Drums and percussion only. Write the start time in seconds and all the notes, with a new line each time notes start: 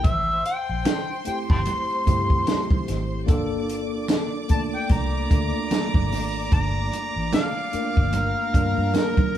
0.04 kick, closed hi-hat, muted conga
0.46 closed hi-hat
0.85 snare, closed hi-hat, high conga
1.25 closed hi-hat
1.50 kick
1.66 closed hi-hat, muted conga
2.07 kick, closed hi-hat, low conga
2.30 kick
2.47 snare, closed hi-hat, high conga
2.71 kick, high conga
2.88 snare, closed hi-hat
3.28 kick, closed hi-hat, muted conga
3.70 closed hi-hat
4.08 snare, closed hi-hat, high conga
4.49 kick, closed hi-hat
4.89 kick, closed hi-hat, muted conga
5.31 kick, closed hi-hat
5.71 snare, closed hi-hat, high conga
5.94 kick, high conga
6.12 snare, open hi-hat
6.52 kick, closed hi-hat, muted conga
6.92 closed hi-hat, muted conga
7.33 snare, closed hi-hat, high conga
7.73 closed hi-hat
7.97 kick
8.13 closed hi-hat, muted conga
8.54 kick, closed hi-hat
8.94 snare, closed hi-hat, high conga
9.17 kick, high conga